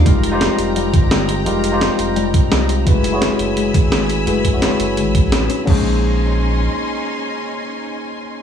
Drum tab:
CC |--------|--------|--------|--------|
HH |xxxxxxxx|xxxxxxxx|xxxxxxxx|xxxxxxxx|
SD |--o---o-|--o---o-|--o---o-|--o---o-|
BD |o----o--|-----o--|o----o--|-o---o--|

CC |x-------|--------|
HH |--------|--------|
SD |--------|--------|
BD |o-------|--------|